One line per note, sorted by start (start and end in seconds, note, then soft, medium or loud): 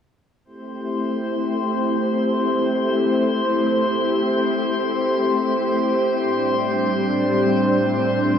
0.44 6.15 A3 medium
0.44 6.15 C4 medium
0.44 6.15 E4 medium
0.44 8.39 G4 medium
0.44 8.39 C5 medium
0.44 8.39 C6 medium
6.19 8.39 A2 medium
6.19 8.39 G3 medium
6.19 8.39 C4 medium
6.19 8.39 D4 medium